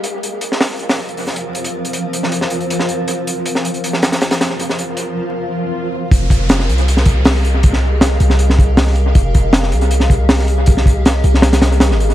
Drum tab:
HH |x-x-x-o-xo-xo-x-|xx-xx-x-x-xxx-x-|x-x-x-xxx-xxxxx-|x-x-x-----------|
SD |-----ooo-oo--o--|-------o-o---o--|-----o---ooooooo|-o--------------|
BD |----------------|----------------|----------------|----------------|

HH |x-x-x-xxx-x-o-x-|x---x-x-x-x-o-x-|x-x-x-xxx-x-o-x-|x-x-x-x-xxxxx-xx|
SD |----oo---o--oo--|-o--o--o-o--oo--|----oo---o--oo--|-o--o--oooo-oo--|
BD |o-o-------o-----|o---------o-----|o-o-------o-----|o-o-------------|